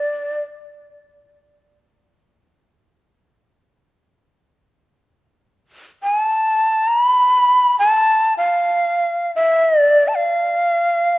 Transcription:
Already playing: D5
6.03 G#5
6.20 A5
6.88 A#5
7.03 B5
7.79 A5
8.38 F5
9.36 E5
9.79 D5
10.08 A5
10.16 F5

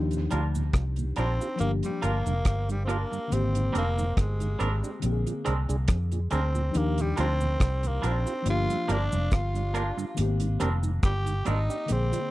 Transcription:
Already playing: D#2 F3 D4 D#4 G4
0.11 D#2 A#2, closed hi-hat, cabasa
0.31 D2 G3 D4 F4 G4 A#4, closed hi-hat, cabasa
0.55 D#2 A#2, cabasa
0.73 C2, kick, cross-stick, closed hi-hat, cabasa
0.96 D#2 A#2, closed hi-hat, cabasa
1.16 A#1 G3 C4 D4 F4 G4 A#4, closed hi-hat, cabasa
1.41 F4 G4, cabasa
1.56 F3 A#3 D4, closed hi-hat
1.60 G1 A#3 G4, cabasa
1.83 G2 D3 G3, closed hi-hat, cabasa
2.02 G1 A#3 D4 F4 G4 A#4, closed hi-hat, cabasa
2.26 F1 G2 D3, closed hi-hat, cabasa
2.45 G1, kick, cross-stick, closed hi-hat, cabasa
2.69 G2 D3 G3, closed hi-hat, cabasa
2.85 A#3 C4 D4 F4 A#4, closed hi-hat
2.89 A#3 G4, cabasa
3.11 G2 D3, muted clean electric guitar stroke, cabasa
3.28 D3 A#3
3.32 G#1 C4 G4, closed hi-hat, cabasa
3.55 G#2 D#3, closed hi-hat, cabasa
3.73 F1 G3 A#3 C4 D4 G4 A#4, closed hi-hat, cabasa
3.78 A#3
3.98 G#2 D#3, cabasa
4.17 G1 G#3, kick, cross-stick, closed hi-hat, cabasa
4.40 G#2 D#3, closed hi-hat, cabasa
4.59 G#1 G3 A#3 C4 D4 G4 A#4, closed hi-hat, cabasa
4.83 D4 G4, cabasa
5.00 A#1 D3 A#3 C4, closed hi-hat, cabasa
5.06 G4
5.12 G#4
5.26 A#2 F3, closed hi-hat, cabasa
5.45 C2 G#3 C4 D4 G#4 A#4, closed hi-hat, cabasa
5.69 C2 D4 G#4, closed hi-hat, cabasa
5.88 F2, kick, cross-stick, closed hi-hat, cabasa
6.12 A#2 F3, closed hi-hat, cabasa
6.31 D2 G#3 C4 D4 G#4 A#4, closed hi-hat, cabasa
6.55 A#2 F3, cabasa
6.71 F3 D4, cabasa
6.75 D#2 A#3 D#4 G4, closed hi-hat
6.98 D#2 A#2 G3, closed hi-hat, cabasa
7.16 D2 G3 C4 D4 F4 G4 A#4, closed hi-hat, cabasa
7.41 D#2 A#2, cabasa
7.60 C2, kick, cross-stick, closed hi-hat, cabasa
7.83 D#2 A#2, closed hi-hat, cabasa
7.87 A#3
8.02 A#1 G3 D4 F4 G4 A#4, closed hi-hat, cabasa
8.07 C4
8.26 F4 G4, closed hi-hat, cabasa
8.42 G1 F3 A#3, closed hi-hat, cabasa
8.47 D4 F4 G4
8.69 G2 D3, closed hi-hat, cabasa
8.88 G1 A#3 D4 F4 G4 A#4, closed hi-hat, cabasa
9.12 F1 G2 D3, cabasa
9.31 G1 F4, kick, cross-stick, closed hi-hat, cabasa
9.54 G2 D3, closed hi-hat, cabasa
9.74 A#3 D4 F4 G4 A#4, closed hi-hat, cabasa
9.97 G2 D3, muted clean electric guitar stroke, cabasa
10.15 D#3 A#3 B3, closed hi-hat, cabasa
10.19 G#1 G4
10.25 C4
10.40 G#2 D#3, closed hi-hat, cabasa
10.60 F1 G3 A#3 C4 D4 G4 A#4, closed hi-hat, cabasa
10.83 G#2 D#3, cabasa
11.03 G1 G4, kick, cross-stick, closed hi-hat, cabasa
11.26 G#2 D#3, closed hi-hat, cabasa
11.45 G#1 G3 A#3 C4 D4 D#4 G4 A#4, closed hi-hat, cabasa
11.69 D4 G4, cabasa
11.86 D3 A#3, closed hi-hat, cabasa
11.90 A#1 C4 G#4
12.12 A#2 F3, closed hi-hat, cabasa

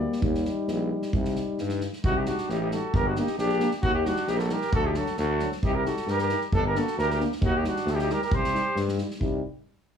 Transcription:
Already playing: G3 A#3 D5
0.12 snare
0.21 D#2 G3 D#4, kick
0.35 snare
0.45 snare
0.67 A#1, snare
1.02 snare
1.13 C2 G3 D#4, kick
1.25 snare
1.36 snare
1.58 G2, snare
1.69 snare
1.80 snare
1.93 snare
2.04 C2 D#4 F#4, kick
2.16 D#4 G4
2.26 G3 D4 D#4 F#4, snare
2.38 snare
2.49 A1 D#4 G4, snare
2.60 D#4 G4
2.71 G3 D#4 F#4 A4, snare
2.94 G1 G4 A#4, kick
3.07 D4 F#4
3.16 A#3 D4 D#4 G4, snare
3.27 snare
3.38 A#1 D4 G4, snare
3.49 snare
3.60 A#3 D4, snare
3.71 snare
3.82 D#2 D#4 F#4, kick
3.94 D#4 G4
4.05 G3 D4 D#4 F#4, snare
4.16 snare
4.27 A#1 D#4 G4, snare
4.36 F#4 G4 A4 A#4, snare
4.49 G3 D#4 G4 A#4, snare
4.61 snare
4.73 D2 F#4 A4, kick
4.84 D#4 G4
4.94 F#3 D4 F#4 A4, snare
5.06 snare
5.17 D2 F#4 A4, snare
5.39 F#3 D4, snare
5.52 snare
5.63 C2 D#4 G4, kick
5.74 G4 A#4
5.86 G3 D#4 F#4 A4, snare
5.97 snare
6.07 G2 G4 A#4, snare
6.18 G4 A#4, snare
6.29 G3 D#4, snare
6.41 snare
6.53 G1 D4 A4, kick
6.67 G4 A#4
6.75 A#3 D4 F#4 A4, snare
6.87 snare
6.98 D2 G4 A#4, snare
7.10 G4 A#4, snare
7.20 A#3 D4, snare
7.32 snare
7.41 D#2 D#4 F#4, kick
7.56 D#4 G4
7.64 G3 D#4 F#4, snare
7.68 D4
7.76 snare
7.86 D2, snare
7.90 F#4 A4
7.94 D#4 G4
7.99 D#4 G4, snare
8.09 G3 D#4 G4 A#4, snare
8.22 G4 A#4, snare
8.32 C2 G4 C5, kick
8.44 snare
8.53 G3 D#4, snare
8.75 G2, snare
8.88 snare
8.98 G3 D#4, snare
9.10 snare
9.20 C2 G3 D#4, kick

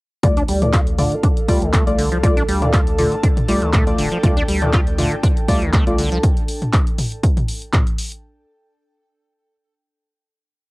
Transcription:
0.23 D2 D3 A3 D4 F4 A4 D5, kick, closed hi-hat
0.31 A4
0.35 D4 F5, closed hi-hat
0.48 D2 G3, open hi-hat
0.62 D#3 A3 F4 D5, closed hi-hat, mid tom
0.73 F4, kick, clap, closed hi-hat
0.79 A5
0.87 closed hi-hat
0.98 D3 A3 F4 D5, open hi-hat, mid tom
1.12 D#3, closed hi-hat
1.23 D4, kick, closed hi-hat
1.37 closed hi-hat
1.48 D2 G3 A3 F4 D5, kick, open hi-hat
1.62 D2 D#3, closed hi-hat
1.73 A3, kick, clap, closed hi-hat
1.87 C2 A3 F4 D5, closed hi-hat
1.98 D3, open hi-hat
2.12 F3, closed hi-hat
2.23 D3 A3 F4 D5, kick, closed hi-hat
2.37 D4, closed hi-hat
2.48 D2 G3, open hi-hat
2.62 D#3 A3 F4 D5, closed hi-hat, mid tom
2.73 F4, kick, clap, closed hi-hat
2.87 closed hi-hat
2.98 D3 A3 F4 D5, open hi-hat, mid tom
3.12 D#3, closed hi-hat
3.23 D4, kick, closed hi-hat
3.37 closed hi-hat, mid tom
3.48 C2 G3 A3 F4 D5, open hi-hat
3.52 G5
3.62 D2 D#3, closed hi-hat
3.73 A3, kick, clap, closed hi-hat, mid tom
3.87 A3 F4 D5, closed hi-hat
3.98 D1 D3, open hi-hat
4.12 F3, closed hi-hat
4.23 D2 D3 A3 F4 D5, kick, closed hi-hat
4.37 D4, closed hi-hat
4.48 D2 G3, open hi-hat
4.62 D#3 A3 F4 D5, closed hi-hat, mid tom
4.73 F4, kick, clap, closed hi-hat
4.87 closed hi-hat
4.98 D3 A3 F4 D5, open hi-hat, mid tom
5.12 D#3, closed hi-hat
5.23 D4, kick, closed hi-hat
5.37 closed hi-hat
5.48 D2 G3 A3 F4 D5, kick, open hi-hat
5.62 D2 D#3, closed hi-hat
5.73 A3, kick, clap, closed hi-hat
5.87 C2 A3 F4 D5, closed hi-hat
5.98 D3, open hi-hat
6.12 F3, closed hi-hat
6.23 kick, closed hi-hat
6.37 closed hi-hat
6.48 open hi-hat
6.62 closed hi-hat, mid tom
6.73 kick, clap, closed hi-hat
6.87 closed hi-hat
6.98 open hi-hat, mid tom
7.12 closed hi-hat
7.23 kick, closed hi-hat
7.37 closed hi-hat, mid tom
7.48 open hi-hat
7.62 closed hi-hat
7.73 kick, clap, closed hi-hat, mid tom
7.87 closed hi-hat
7.98 open hi-hat
8.12 closed hi-hat

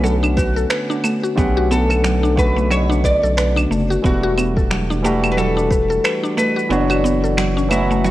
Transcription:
Already playing: B1 D3 A3 B3 C#4 F#4 F#5
0.03 F#3 A4, shaker
0.23 D4, claves, shaker
0.37 F#4 B4, kick, shaker
0.57 A4, shaker
0.70 B4, finger snap, shaker
0.90 D4, shaker
1.04 A3, claves, shaker
1.23 F#4, shaker
1.36 B1 D3 A3 B3 C#4 G4 F#5, kick, shaker
1.57 F#4
1.71 B3 A4, shaker
1.90 A4, claves, shaker
2.04 F#3, finger snap, shaker
2.23 D4, shaker
2.35 C#3 D3 A3 B3 B4, kick, shaker
2.40 F#4
2.57 A3, shaker
2.71 F#3 C#5, claves, shaker
2.90 D4, shaker
3.04 B4 D5, kick, shaker
3.23 B1 A4, shaker
3.37 B4, finger snap, shaker
3.56 D4, claves, shaker
3.70 F#1 A3, shaker
3.90 F#4, shaker
4.02 E1 E3 G3 A3 B3 D4 F#4, kick, shaker
4.06 F#4
4.23 F#4
4.37 B3, claves, shaker
4.56 A4, kick, shaker
4.70 F#3, finger snap, shaker
4.90 D4, shaker
5.02 E3 G3 A3 D4 F#4 G4, shaker
5.24 A3, claves, shaker
5.32 B4
5.37 F#3 A4, shaker
5.57 D4, shaker
5.70 B4, kick, shaker
5.90 A4, shaker
6.04 B4, finger snap, claves, shaker
6.23 D4, shaker
6.37 A3 B4, shaker
6.56 F#4, shaker
6.69 F#1 E3 F#3 B3 D4 F#4 C#5, shaker
6.90 F#4, claves, shaker
7.04 B3, shaker
7.24 A4, shaker
7.37 F#3, finger snap, shaker
7.57 C#4, shaker
7.69 E3 F#3 A3 B3 C#4 E4, claves, shaker
7.73 F#4
7.91 A3, shaker
8.04 F#3 F#4, shaker

